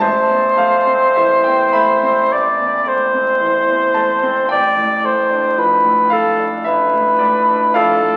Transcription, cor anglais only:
0, 0, Header, 1, 2, 480
1, 0, Start_track
1, 0, Key_signature, 0, "minor"
1, 0, Tempo, 1151631
1, 6, Time_signature, 4, 2, 24, 8
1, 966, Tempo, 1102941
1, 1446, Tempo, 1081081
1, 3554, End_track
2, 0, Start_track
2, 0, Title_t, "Cor anglais"
2, 0, Program_c, 0, 69
2, 6, Note_on_c, 0, 72, 69
2, 968, Note_on_c, 0, 74, 58
2, 975, Note_off_c, 0, 72, 0
2, 1209, Note_on_c, 0, 72, 61
2, 1216, Note_off_c, 0, 74, 0
2, 1927, Note_off_c, 0, 72, 0
2, 1929, Note_on_c, 0, 74, 63
2, 2170, Note_on_c, 0, 72, 55
2, 2177, Note_off_c, 0, 74, 0
2, 2409, Note_on_c, 0, 71, 63
2, 2416, Note_off_c, 0, 72, 0
2, 2646, Note_on_c, 0, 69, 55
2, 2653, Note_off_c, 0, 71, 0
2, 2801, Note_off_c, 0, 69, 0
2, 2888, Note_on_c, 0, 71, 61
2, 3370, Note_on_c, 0, 69, 57
2, 3377, Note_off_c, 0, 71, 0
2, 3554, Note_off_c, 0, 69, 0
2, 3554, End_track
0, 0, End_of_file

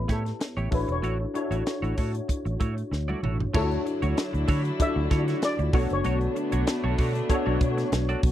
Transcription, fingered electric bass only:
0, 0, Header, 1, 2, 480
1, 0, Start_track
1, 0, Tempo, 626305
1, 791, Time_signature, 4, 2, 24, 8
1, 6374, End_track
2, 0, Start_track
2, 0, Title_t, "Fingered electric bass"
2, 0, Program_c, 0, 33
2, 70, Note_on_c, 0, 45, 98
2, 236, Note_off_c, 0, 45, 0
2, 437, Note_on_c, 0, 33, 84
2, 514, Note_off_c, 0, 33, 0
2, 551, Note_on_c, 0, 33, 88
2, 641, Note_off_c, 0, 33, 0
2, 678, Note_on_c, 0, 28, 90
2, 755, Note_off_c, 0, 28, 0
2, 787, Note_on_c, 0, 33, 79
2, 955, Note_off_c, 0, 33, 0
2, 1155, Note_on_c, 0, 33, 76
2, 1234, Note_off_c, 0, 33, 0
2, 1399, Note_on_c, 0, 33, 91
2, 1477, Note_off_c, 0, 33, 0
2, 1514, Note_on_c, 0, 45, 83
2, 1680, Note_off_c, 0, 45, 0
2, 1882, Note_on_c, 0, 33, 75
2, 1959, Note_off_c, 0, 33, 0
2, 1998, Note_on_c, 0, 45, 92
2, 2163, Note_off_c, 0, 45, 0
2, 2235, Note_on_c, 0, 38, 76
2, 2401, Note_off_c, 0, 38, 0
2, 2475, Note_on_c, 0, 33, 78
2, 2641, Note_off_c, 0, 33, 0
2, 2715, Note_on_c, 0, 38, 92
2, 2881, Note_off_c, 0, 38, 0
2, 3086, Note_on_c, 0, 38, 102
2, 3162, Note_off_c, 0, 38, 0
2, 3326, Note_on_c, 0, 38, 107
2, 3402, Note_off_c, 0, 38, 0
2, 3438, Note_on_c, 0, 50, 87
2, 3603, Note_off_c, 0, 50, 0
2, 3802, Note_on_c, 0, 38, 97
2, 3879, Note_off_c, 0, 38, 0
2, 3918, Note_on_c, 0, 50, 104
2, 4083, Note_off_c, 0, 50, 0
2, 4283, Note_on_c, 0, 38, 87
2, 4360, Note_off_c, 0, 38, 0
2, 4395, Note_on_c, 0, 35, 105
2, 4484, Note_off_c, 0, 35, 0
2, 4529, Note_on_c, 0, 30, 102
2, 4603, Note_off_c, 0, 30, 0
2, 4636, Note_on_c, 0, 35, 97
2, 4801, Note_off_c, 0, 35, 0
2, 5004, Note_on_c, 0, 35, 108
2, 5080, Note_off_c, 0, 35, 0
2, 5242, Note_on_c, 0, 35, 102
2, 5318, Note_off_c, 0, 35, 0
2, 5352, Note_on_c, 0, 47, 102
2, 5518, Note_off_c, 0, 47, 0
2, 5722, Note_on_c, 0, 35, 92
2, 5798, Note_off_c, 0, 35, 0
2, 5833, Note_on_c, 0, 47, 99
2, 5999, Note_off_c, 0, 47, 0
2, 6072, Note_on_c, 0, 35, 84
2, 6237, Note_off_c, 0, 35, 0
2, 6310, Note_on_c, 0, 35, 86
2, 6374, Note_off_c, 0, 35, 0
2, 6374, End_track
0, 0, End_of_file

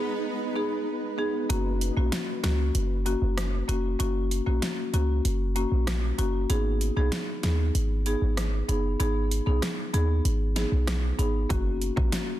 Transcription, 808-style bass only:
0, 0, Header, 1, 2, 480
1, 0, Start_track
1, 0, Tempo, 625000
1, 1152, Time_signature, 4, 2, 24, 8
1, 9522, End_track
2, 0, Start_track
2, 0, Title_t, "808-style bass"
2, 0, Program_c, 0, 38
2, 1152, Note_on_c, 0, 30, 104
2, 1464, Note_off_c, 0, 30, 0
2, 1512, Note_on_c, 0, 34, 90
2, 1616, Note_off_c, 0, 34, 0
2, 1873, Note_on_c, 0, 37, 88
2, 2080, Note_off_c, 0, 37, 0
2, 2111, Note_on_c, 0, 30, 106
2, 2423, Note_off_c, 0, 30, 0
2, 2472, Note_on_c, 0, 30, 92
2, 2784, Note_off_c, 0, 30, 0
2, 2832, Note_on_c, 0, 29, 91
2, 3040, Note_off_c, 0, 29, 0
2, 3073, Note_on_c, 0, 30, 112
2, 3384, Note_off_c, 0, 30, 0
2, 3432, Note_on_c, 0, 34, 81
2, 3536, Note_off_c, 0, 34, 0
2, 3791, Note_on_c, 0, 37, 91
2, 3999, Note_off_c, 0, 37, 0
2, 4032, Note_on_c, 0, 30, 109
2, 4344, Note_off_c, 0, 30, 0
2, 4390, Note_on_c, 0, 34, 91
2, 4703, Note_off_c, 0, 34, 0
2, 4751, Note_on_c, 0, 30, 88
2, 4960, Note_off_c, 0, 30, 0
2, 4991, Note_on_c, 0, 32, 114
2, 5304, Note_off_c, 0, 32, 0
2, 5351, Note_on_c, 0, 35, 91
2, 5456, Note_off_c, 0, 35, 0
2, 5712, Note_on_c, 0, 39, 89
2, 5920, Note_off_c, 0, 39, 0
2, 5951, Note_on_c, 0, 32, 110
2, 6264, Note_off_c, 0, 32, 0
2, 6311, Note_on_c, 0, 32, 90
2, 6623, Note_off_c, 0, 32, 0
2, 6673, Note_on_c, 0, 30, 91
2, 6880, Note_off_c, 0, 30, 0
2, 6912, Note_on_c, 0, 32, 102
2, 7224, Note_off_c, 0, 32, 0
2, 7272, Note_on_c, 0, 35, 97
2, 7376, Note_off_c, 0, 35, 0
2, 7633, Note_on_c, 0, 39, 90
2, 7841, Note_off_c, 0, 39, 0
2, 7872, Note_on_c, 0, 32, 105
2, 8184, Note_off_c, 0, 32, 0
2, 8232, Note_on_c, 0, 35, 93
2, 8544, Note_off_c, 0, 35, 0
2, 8592, Note_on_c, 0, 32, 94
2, 8800, Note_off_c, 0, 32, 0
2, 8833, Note_on_c, 0, 30, 104
2, 9144, Note_off_c, 0, 30, 0
2, 9194, Note_on_c, 0, 34, 95
2, 9297, Note_off_c, 0, 34, 0
2, 9522, End_track
0, 0, End_of_file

